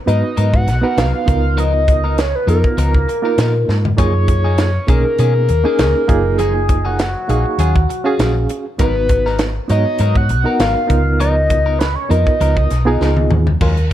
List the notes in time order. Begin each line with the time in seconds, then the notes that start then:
0.06 G#2 F#3 B3 D#4 F#4 A#4 B4 D#5, closed hi-hat
0.24 muted clean electric guitar stroke
0.37 G#2 F#3 B3 D#4 A#4, closed hi-hat
0.54 F#5, muted clean electric guitar stroke, kick
0.67 B1, muted clean electric guitar stroke, snare, closed hi-hat
0.82 B3 D#4 F#4 A#4 B4
0.97 C2 F#3 B3 D#4 A#4 F5, snare, closed hi-hat
1.14 muted clean electric guitar stroke
1.26 C#2 B3 D#4 F4 A#4, muted clean electric guitar stroke, kick, closed hi-hat
1.57 F3 B3 D#4 A#4 D#5, closed hi-hat
1.74 muted clean electric guitar stroke
1.88 muted clean electric guitar stroke, kick, closed hi-hat
2.04 B3 D#4 A#4
2.18 C#5, muted clean electric guitar stroke, snare, closed hi-hat
2.35 B4
2.46 F2 F3 B3 D#4 F4 A#4, closed hi-hat
2.64 kick
2.77 C#2 F3 B3 D#4 A#4, closed hi-hat
2.94 muted clean electric guitar stroke, kick
3.09 muted clean electric guitar stroke, closed hi-hat
3.22 A#3 B3 D#4 F4 A#4
3.38 A#2 F3 B3 D#4 A#4, snare, closed hi-hat
3.55 muted clean electric guitar stroke
3.68 G#2, muted clean electric guitar stroke, snare
3.85 floor tom
3.97 F#2 F3 A#3 D#4 F4 G#4 C#5, kick, closed hi-hat
4.15 muted clean electric guitar stroke
4.28 muted clean electric guitar stroke, kick, closed hi-hat
4.44 A#3 D#4 G#4
4.58 muted clean electric guitar stroke, snare, closed hi-hat
4.87 B1 D#3 A#3 C#4 D#4 G#4 A#4, kick, closed hi-hat
5.05 muted clean electric guitar stroke
5.18 B2 D#3 A#3 C#4 G#4, closed hi-hat
5.35 muted clean electric guitar stroke
5.49 D#2, muted clean electric guitar stroke, closed hi-hat
5.64 A#3 C#4 D#4 G#4, muted fingered electric bass stroke
5.79 C#2 D#3 A#3 C#4 G#4, snare, closed hi-hat
5.96 muted clean electric guitar stroke
6.08 F#1 A#3 D#4 F4 G#4, muted clean electric guitar stroke, kick, closed hi-hat
6.38 F3 A#3 D#4 G#4, closed hi-hat
6.55 muted clean electric guitar stroke
6.69 muted clean electric guitar stroke, kick, closed hi-hat
6.85 A#3 D#4 F#4 G#4
6.99 muted clean electric guitar stroke, snare, closed hi-hat
7.28 A#1 F3 A#3 D#4 G#4 F5, closed hi-hat
7.46 muted clean electric guitar stroke
7.58 D#2 F#3 C#4 F4 G#4, closed hi-hat
7.76 kick
7.90 muted clean electric guitar stroke, closed hi-hat
8.04 C#4 F4 F#4 G#4 F5
8.19 A#1 F#3 C#4 F4 G#4, snare, closed hi-hat
8.35 muted clean electric guitar stroke
8.49 muted clean electric guitar stroke, closed hi-hat
8.78 G#1 F#3 B3 D#4 F#4 A#4 B4, kick, closed hi-hat
9.09 muted clean electric guitar stroke, kick, closed hi-hat
9.26 B3 D#4 A#4, snare
9.39 muted clean electric guitar stroke, snare, closed hi-hat
9.68 G#2 F#3 B3 D#4 F#4 A#4 C#5 D#5, closed hi-hat
9.86 muted clean electric guitar stroke
9.99 G#2 F#3 B3 D#4 A#4, closed hi-hat
10.15 F#5, muted clean electric guitar stroke, kick
10.29 B1, muted clean electric guitar stroke, closed hi-hat
10.44 B3 D#4 F#4 A#4, muted fingered electric bass stroke
10.59 G#1 F#3 B3 D#4 A#4 F5, snare, closed hi-hat
10.76 muted clean electric guitar stroke
10.87 C#2 B3 D#4 F4 A#4, muted clean electric guitar stroke, kick, closed hi-hat
11.20 F3 B3 D#4 A#4 D#5, closed hi-hat
11.50 muted clean electric guitar stroke, kick, closed hi-hat
11.66 B3 D#4 A#4
11.79 B4, muted clean electric guitar stroke, snare, closed hi-hat
11.95 C#5
12.09 F2 F3 B3 D#4 F4 A#4 D#5, closed hi-hat
12.27 kick
12.40 C#2 F3 B3 D#4 A#4, closed hi-hat
12.57 kick
12.70 B1, muted clean electric guitar stroke, snare, closed hi-hat
12.85 B3 D#4 F4 G#4 A#4
13.00 C#2 F3 B3 D#4 A#4, snare
13.17 muted clean electric guitar stroke, high tom
13.30 D#2, muted clean electric guitar stroke, mid tom
13.47 floor tom
13.61 D#2 F#3 G#3 C#4 F4 A#4, kick, crash
13.77 muted clean electric guitar stroke, closed hi-hat